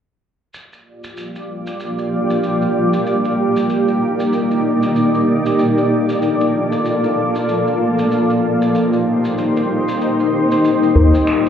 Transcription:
0.53 11.49 A#3 medium
0.53 3.03 F4 medium
0.53 5.55 G4 medium
0.53 3.03 D5 medium
0.53 shaker soft
0.73 shaker soft
1.04 shaker medium
1.17 shaker soft
1.36 shaker soft
1.67 shaker medium
1.80 shaker medium
1.98 shaker soft
2.30 shaker medium
2.43 shaker soft
2.62 shaker soft
2.93 shaker medium
3.06 5.56 D#4 medium
3.06 8.07 D5 medium
3.06 shaker medium
3.25 shaker soft
3.56 shaker medium
3.69 shaker soft
3.88 shaker soft
4.20 shaker medium
4.33 shaker medium
4.51 shaker soft
4.83 shaker medium
4.96 shaker soft
5.14 shaker soft
5.46 shaker medium
5.58 8.09 F4 medium
5.58 8.09 A4 medium
5.58 shaker soft
5.78 shaker soft
6.09 shaker medium
6.22 shaker medium
6.41 shaker soft
6.72 shaker medium
6.85 shaker medium
7.04 shaker soft
7.35 shaker medium
7.49 shaker medium
7.67 shaker soft
7.99 shaker medium
8.11 10.61 D#4 medium
8.11 10.61 G4 medium
8.11 10.61 C5 medium
8.11 shaker medium
8.30 shaker soft
8.62 shaker medium
8.75 shaker soft
8.93 shaker soft
9.25 shaker medium
9.38 shaker soft
9.57 shaker soft
9.88 shaker medium
10.01 shaker soft
10.20 shaker soft
10.51 shaker medium
10.64 11.49 F4 medium
10.64 11.49 G4 medium
10.64 11.49 D5 medium
10.64 shaker soft
10.83 shaker soft
10.96 djembe bass medium
11.13 djembe slap soft
11.13 shaker medium
11.27 finger snap medium
11.27 shaker soft
11.46 shaker soft

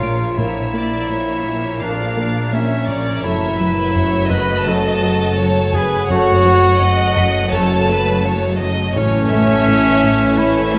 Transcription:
0.00 0.38 A#1 medium
0.00 0.38 A#2 medium
0.00 0.24 A#2 medium
0.00 0.35 F3 soft
0.00 0.35 A#3 soft
0.00 0.36 F4 medium
0.00 0.39 F4 medium
0.00 0.38 A#4 medium
0.00 0.37 C#5 medium
0.00 0.38 F5 medium
0.00 0.38 A#5 medium
0.00 0.71 G6 soft
0.00 2.14 D7 soft
0.36 3.21 A#1 medium
0.36 0.60 A#2 medium
0.36 3.21 A#2 medium
0.36 3.21 F3 medium
0.36 0.64 A#3 medium
0.36 3.21 A#3 medium
0.36 1.84 E4 medium
0.36 0.63 A#4 medium
0.36 3.21 A#4 medium
0.36 0.74 C#5 medium
0.36 1.79 E5 medium
0.36 3.21 A#5 medium
0.41 0.66 F2 medium
0.41 0.66 F3 medium
0.74 0.96 A#3 medium
0.74 1.11 D5 medium
1.09 1.31 A#2 medium
1.09 1.82 C#5 medium
1.44 1.66 A#2 medium
1.82 2.09 F2 medium
1.82 2.03 A#2 medium
1.82 2.09 F3 medium
1.82 2.07 A#3 medium
1.82 2.56 D4 medium
1.82 2.07 A#4 medium
1.82 2.54 D5 medium
1.82 2.53 F5 medium
2.17 2.39 A#3 medium
2.53 2.75 A#3 medium
2.53 3.23 C#4 medium
2.53 3.25 C#5 medium
2.53 2.90 E5 medium
2.88 3.10 A#2 medium
2.88 3.24 D5 medium
3.22 6.08 F#1 medium
3.22 6.07 F#1 medium
3.22 6.06 F#2 medium
3.22 3.46 F#2 medium
3.22 3.51 F#2 medium
3.22 6.06 F#3 medium
3.22 6.06 A3 medium
3.22 3.51 A3 medium
3.22 3.50 C#4 medium
3.22 4.32 E4 loud
3.22 3.49 A4 medium
3.22 3.59 C#5 medium
3.22 4.29 E5 medium
3.27 6.08 F#4 medium
3.27 6.08 C#5 medium
3.27 6.12 F#5 medium
3.58 3.82 F#3 medium
3.58 3.95 B4 medium
3.95 4.18 F#2 medium
3.95 4.30 C#5 medium
4.30 4.53 F#2 medium
4.30 4.70 B4 loud
4.30 5.38 D#5 medium
4.30 4.67 B5 medium
4.66 4.93 F#2 medium
4.66 4.89 F#2 medium
4.66 4.93 A3 medium
4.66 4.92 C#4 medium
4.66 4.92 A4 medium
4.66 5.76 A4 loud
4.66 5.74 A5 medium
5.03 5.24 F#3 medium
5.37 5.60 F#3 medium
5.37 5.74 C#5 medium
5.74 5.95 F#2 medium
5.74 6.11 G#4 loud
5.74 6.10 B4 medium
5.74 6.11 G#5 medium
6.08 8.92 F#1 medium
6.08 8.93 F#1 medium
6.08 8.92 F#2 medium
6.08 6.32 F#2 loud
6.08 6.36 F#2 medium
6.08 8.92 F#3 medium
6.08 6.36 A3 medium
6.08 8.93 A3 medium
6.08 6.36 C#4 medium
6.08 8.91 F#4 medium
6.08 7.24 F#4 loud
6.08 6.35 A4 medium
6.08 6.79 C#5 medium
6.08 8.92 C#5 medium
6.08 7.50 F#5 loud
6.08 8.92 A5 medium
6.46 6.67 F#3 medium
6.79 7.03 F#2 medium
6.79 7.52 D#5 loud
7.17 7.39 F#2 medium
7.17 9.28 B6 medium
7.51 7.74 F#2 medium
7.51 7.79 F#2 medium
7.51 7.79 A3 medium
7.51 7.79 C#4 medium
7.51 8.56 A4 loud
7.51 7.79 A4 medium
7.51 7.88 C#5 medium
7.51 8.60 A5 loud
7.88 8.11 F#3 medium
7.88 8.24 B4 medium
8.24 8.47 F#3 medium
8.24 8.60 C#5 medium
8.58 8.82 F#2 medium
8.58 8.94 D#5 medium
8.95 10.79 A1 medium
8.95 9.18 A2 loud
8.95 10.79 A2 medium
8.95 10.36 A2 medium
8.95 10.79 E3 medium
8.95 10.36 A3 medium
8.95 10.39 C#4 loud
8.95 10.79 C#4 medium
8.95 10.36 C#4 medium
8.95 10.79 E4 medium
8.95 10.36 A4 medium
8.95 10.79 C#5 medium
8.95 10.35 C#5 loud
8.95 9.32 C#5 medium
8.95 10.79 A5 medium
9.31 9.54 A3 medium
9.31 10.39 E5 medium
9.68 9.90 A2 medium
10.04 10.25 A2 medium
10.38 10.61 A2 medium
10.38 10.79 A2 medium
10.38 10.79 A3 medium
10.38 10.79 C#4 medium
10.38 10.79 E4 loud
10.38 10.79 A4 medium
10.38 10.74 C#5 medium
10.38 10.79 E5 medium
10.74 10.79 A3 medium

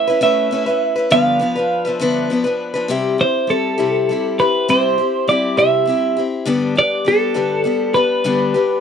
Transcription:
0.00 0.22 E5 medium
0.07 0.20 C#4 soft
0.07 0.21 E4 medium
0.07 0.22 B4 medium
0.21 0.50 A3 medium
0.21 0.51 C#4 medium
0.21 0.52 E4 medium
0.21 0.53 B4 medium
0.21 1.12 E5 medium
0.51 0.67 A3 medium
0.51 0.67 C#4 medium
0.51 0.67 E4 medium
0.51 0.65 B4 medium
0.66 0.98 C#4 soft
0.66 0.97 E4 soft
0.66 0.94 B4 medium
0.96 1.12 C#4 soft
0.96 1.12 E4 soft
0.96 1.11 B4 medium
1.10 1.41 G2 medium
1.10 1.41 D3 medium
1.10 1.38 F3 medium
1.10 1.40 B3 medium
1.10 1.41 D4 loud
1.10 1.41 B4 medium
1.10 1.88 F5 loud
1.39 1.55 F3 medium
1.39 1.56 B3 medium
1.39 1.55 D4 medium
1.39 1.54 B4 medium
1.55 1.88 F3 soft
1.55 1.86 B3 soft
1.55 1.85 D4 soft
1.55 1.84 B4 medium
1.85 2.00 F3 medium
1.85 2.00 B3 medium
1.85 2.01 D4 medium
1.85 2.00 B4 medium
1.85 2.27 E5 loud
2.00 2.30 G2 medium
2.00 2.31 D3 medium
2.00 2.29 F3 medium
2.00 2.30 B3 medium
2.00 2.31 D4 medium
2.00 2.31 B4 medium
2.30 2.45 F3 medium
2.30 2.45 B3 medium
2.30 2.44 D4 medium
2.30 2.43 B4 medium
2.44 2.76 F3 soft
2.44 2.75 B3 medium
2.44 2.74 D4 soft
2.44 2.72 B4 medium
2.74 2.89 F3 medium
2.74 2.90 B3 medium
2.74 2.90 D4 medium
2.74 2.89 B4 medium
2.88 3.19 C3 medium
2.88 3.20 G3 medium
2.88 3.20 C4 medium
2.88 3.19 E4 medium
2.88 3.17 G4 loud
3.18 3.48 C4 soft
3.18 3.49 E4 soft
3.18 3.49 G4 soft
3.18 3.51 C5 medium
3.47 3.78 G3 soft
3.47 3.78 C4 soft
3.47 3.78 E4 medium
3.47 3.77 G4 medium
3.47 4.42 A4 medium
3.78 4.10 C3 soft
3.78 4.08 G3 medium
3.78 4.09 C4 medium
3.78 4.09 E4 medium
3.78 4.08 G4 medium
4.09 4.39 G3 soft
4.09 4.40 C4 medium
4.09 4.40 E4 medium
4.09 4.38 G4 medium
4.39 4.68 C4 soft
4.39 4.68 E4 soft
4.39 4.69 G4 medium
4.39 4.67 B4 medium
4.68 4.98 C3 medium
4.68 4.98 G3 medium
4.68 4.98 C4 medium
4.68 4.98 E4 medium
4.68 4.97 G4 medium
4.68 5.29 C5 medium
4.98 5.28 C4 soft
4.98 5.28 E4 soft
4.98 5.28 G4 soft
5.28 5.57 G3 medium
5.28 5.58 C4 medium
5.28 5.57 E4 medium
5.28 5.56 G4 medium
5.28 5.58 D5 medium
5.57 5.88 C3 medium
5.57 5.84 G3 soft
5.57 5.86 C4 medium
5.57 5.87 E4 medium
5.57 5.87 G4 medium
5.57 6.21 E5 medium
5.86 6.16 G3 soft
5.86 6.17 C4 medium
5.86 6.17 E4 medium
5.86 6.15 G4 medium
6.17 6.47 C4 soft
6.17 6.47 E4 soft
6.17 6.47 G4 medium
6.45 6.76 G2 medium
6.45 6.76 D3 medium
6.45 6.76 G3 medium
6.45 6.77 B3 medium
6.45 6.76 D4 medium
6.45 6.74 G4 medium
6.75 7.03 G3 soft
6.75 7.05 B3 soft
6.75 7.06 D4 soft
6.75 7.06 G4 soft
6.75 7.05 D5 medium
7.05 7.35 G3 medium
7.05 7.34 B3 medium
7.05 7.34 D4 medium
7.05 7.33 G4 medium
7.05 7.99 A4 medium
7.34 7.66 G2 medium
7.34 7.66 D3 medium
7.34 7.63 G3 soft
7.34 7.64 B3 medium
7.34 7.65 D4 medium
7.34 7.65 G4 medium
7.64 7.94 G3 medium
7.64 7.95 B3 medium
7.64 7.94 D4 medium
7.64 7.93 G4 medium
7.94 8.23 G3 soft
7.94 8.24 B3 soft
7.94 8.25 D4 soft
7.94 8.24 G4 medium
7.94 8.80 B4 medium
8.24 8.54 G2 medium
8.24 8.55 D3 medium
8.24 8.54 G3 medium
8.24 8.55 B3 medium
8.24 8.54 D4 medium
8.24 8.53 G4 medium
8.54 8.80 G3 soft
8.54 8.80 B3 soft
8.54 8.80 D4 soft
8.54 8.80 G4 soft

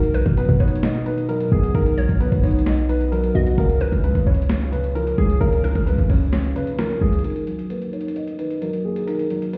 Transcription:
0.00 0.24 B1 loud
0.00 1.05 D#3 loud
0.00 0.35 A#4 medium
0.00 closed hi-hat medium
0.14 1.27 F#3 medium
0.14 0.36 B4 medium
0.14 closed hi-hat medium
0.26 0.48 B2 loud
0.26 kick medium
0.26 closed hi-hat medium
0.37 1.50 B3 medium
0.37 0.57 B4 medium
0.37 closed hi-hat medium
0.49 1.48 B2 loud
0.49 kick medium
0.49 closed hi-hat medium
0.60 1.75 D#4 medium
0.60 0.80 C#5 medium
0.60 kick medium
0.60 closed hi-hat soft
0.68 closed hi-hat medium
0.75 closed hi-hat medium
0.83 1.98 D#5 loud
0.83 snare loud
0.83 closed hi-hat medium
0.95 closed hi-hat medium
1.06 1.73 D#3 medium
1.06 1.26 B4 medium
1.06 closed hi-hat medium
1.18 closed hi-hat medium
1.29 1.96 F#3 medium
1.29 1.49 A#4 medium
1.29 closed hi-hat medium
1.40 closed hi-hat medium
1.52 1.74 B1 loud
1.52 2.19 B3 medium
1.52 1.72 G#4 medium
1.52 kick loud
1.63 closed hi-hat medium
1.75 2.08 B1 loud
1.75 2.88 D#3 medium
1.75 2.18 A#4 loud
1.75 kick loud
1.75 closed hi-hat medium
1.86 closed hi-hat medium
1.97 3.11 F#3 medium
1.97 2.19 C#5 medium
1.97 closed hi-hat medium
2.09 2.31 B1 loud
2.09 kick medium
2.09 closed hi-hat medium
2.20 3.33 B3 medium
2.20 2.40 B4 medium
2.20 closed hi-hat medium
2.32 3.31 B1 loud
2.32 kick medium
2.32 closed hi-hat medium
2.43 3.58 D#4 medium
2.43 2.63 C#5 medium
2.43 kick medium
2.43 closed hi-hat soft
2.43 open hi-hat medium
2.51 closed hi-hat medium
2.59 closed hi-hat medium
2.66 3.58 D#5 loud
2.66 snare loud
2.66 closed hi-hat medium
2.78 closed hi-hat medium
2.89 3.58 D#3 medium
2.89 3.09 B4 medium
2.89 closed hi-hat medium
3.01 closed hi-hat medium
3.12 3.58 F#3 loud
3.12 3.32 A#4 medium
3.12 closed hi-hat medium
3.24 closed hi-hat medium
3.35 3.57 B1 loud
3.35 3.58 B3 medium
3.35 3.55 F#4 medium
3.35 3.57 D#5 medium
3.47 closed hi-hat medium
3.58 3.91 C#2 loud
3.58 4.71 C#3 loud
3.58 4.01 A#4 medium
3.58 kick loud
3.58 closed hi-hat medium
3.69 closed hi-hat medium
3.81 4.94 F3 medium
3.81 4.03 B4 medium
3.81 closed hi-hat medium
3.92 4.14 C#2 loud
3.92 kick medium
3.92 closed hi-hat medium
4.04 5.17 G#3 medium
4.04 4.24 B4 medium
4.04 closed hi-hat medium
4.15 5.14 C#2 loud
4.15 kick medium
4.15 closed hi-hat medium
4.27 5.41 C#4 medium
4.27 4.46 C#5 medium
4.27 kick medium
4.27 closed hi-hat soft
4.34 closed hi-hat medium
4.42 closed hi-hat medium
4.49 5.64 C#5 loud
4.49 snare loud
4.49 closed hi-hat medium
4.61 closed hi-hat medium
4.72 5.40 C#3 medium
4.72 4.92 B4 medium
4.72 closed hi-hat medium
4.84 closed hi-hat medium
4.95 5.62 F3 loud
4.95 5.15 A#4 medium
4.95 closed hi-hat medium
5.07 closed hi-hat medium
5.18 5.40 C#2 loud
5.18 5.85 G#3 medium
5.18 5.38 G#4 medium
5.18 kick loud
5.30 closed hi-hat medium
5.41 5.74 C#2 loud
5.41 6.54 C#3 loud
5.41 5.84 A#4 loud
5.41 kick loud
5.41 closed hi-hat medium
5.53 closed hi-hat medium
5.64 6.77 F3 medium
5.64 5.86 A#4 medium
5.64 closed hi-hat medium
5.75 5.97 C#2 loud
5.75 kick medium
5.75 closed hi-hat medium
5.86 7.00 G#3 medium
5.86 6.06 B4 medium
5.86 closed hi-hat medium
5.98 6.53 C#2 loud
5.98 kick medium
5.98 closed hi-hat medium
6.10 7.24 C#4 medium
6.10 6.29 C#5 medium
6.10 kick loud
6.10 open hi-hat medium
6.33 7.24 C#5 loud
6.33 snare loud
6.33 closed hi-hat medium
6.44 closed hi-hat medium
6.56 7.24 C#3 medium
6.56 6.75 B4 medium
6.56 closed hi-hat medium
6.67 closed hi-hat medium
6.78 7.24 F3 medium
6.78 6.98 A#4 medium
6.78 snare loud
6.78 closed hi-hat medium
6.90 closed hi-hat medium
7.01 7.23 C#2 loud
7.01 7.24 G#3 medium
7.01 7.21 G#4 medium
7.01 kick loud
7.13 closed hi-hat medium
7.19 closed hi-hat medium
7.24 8.37 D#3 medium
7.24 7.67 A#4 medium
7.24 closed hi-hat medium
7.30 closed hi-hat soft
7.36 closed hi-hat medium
7.47 8.60 F#3 medium
7.47 closed hi-hat medium
7.59 closed hi-hat medium
7.70 8.83 A#3 medium
7.70 7.90 B4 medium
7.70 closed hi-hat medium
7.82 closed hi-hat soft
7.93 9.08 D#4 medium
7.93 8.13 C#5 medium
7.93 closed hi-hat soft
8.01 closed hi-hat medium
8.08 closed hi-hat medium
8.16 9.30 D#5 medium
8.16 closed hi-hat medium
8.27 closed hi-hat medium
8.39 9.06 D#3 medium
8.39 8.59 B4 medium
8.39 closed hi-hat medium
8.50 closed hi-hat medium
8.62 9.29 F#3 medium
8.62 8.82 A#4 medium
8.62 closed hi-hat medium
8.73 closed hi-hat medium
8.85 9.52 A#3 medium
8.85 9.04 G#4 medium
8.96 closed hi-hat medium
9.07 9.57 D#3 medium
9.07 9.50 A#4 loud
9.07 closed hi-hat medium
9.19 closed hi-hat medium
9.30 9.57 F#3 medium
9.30 closed hi-hat medium
9.42 closed hi-hat medium
9.53 9.57 A#3 medium
9.53 9.57 B4 medium
9.53 closed hi-hat medium

